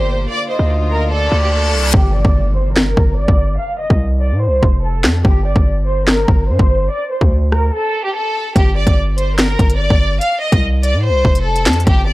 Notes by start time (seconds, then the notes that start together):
Already playing: G1 A#2 A#3 G4 C5
0.28 D3 F4 D5
0.48 C5 D#5
0.59 D2
0.90 A#4
1.11 A4 D5, reverse cymbal
1.32 D2
1.42 G4
1.52 A4
1.73 C2
1.94 G1 G4, kick, impact
2.14 D5
2.25 G1, kick
2.55 C5
2.75 A#4, snare, clap
2.97 G1, kick
3.18 D5
3.28 G1, kick
3.59 F5
3.80 D#5
3.90 C2, kick
4.21 D5
4.32 A2
4.42 C5
4.47 C2
4.63 F1, kick
4.83 A4
5.04 F2, snare, clap
5.25 G1 G4, kick
5.46 D5
5.56 G1, kick
5.87 C5
6.07 A#4, snare, clap
6.28 G1, kick
6.49 G2 C5
6.59 G1, kick
6.91 D5
7.11 C5
7.21 D2, kick
7.52 A#4, cross-stick
7.73 A4
8.04 G4
8.14 A4
8.56 G1 G4, kick, closed hi-hat
8.76 D5
8.87 G1, kick, closed hi-hat
9.18 C5, closed hi-hat
9.38 A#4, snare, clap, closed hi-hat
9.59 G1, kick, closed hi-hat
9.70 closed hi-hat
9.80 D5
9.90 G1, kick
10.21 F5, closed hi-hat
10.42 D#5
10.52 C2, kick, closed hi-hat
10.83 D5, closed hi-hat
10.94 A2
11.04 C5
11.09 C2
11.25 F1, kick
11.35 closed hi-hat
11.45 A4
11.56 closed hi-hat
11.66 F2, snare, clap, closed hi-hat
11.73 closed hi-hat
11.80 closed hi-hat
11.87 G1 G4, kick, closed hi-hat, swell
12.08 D5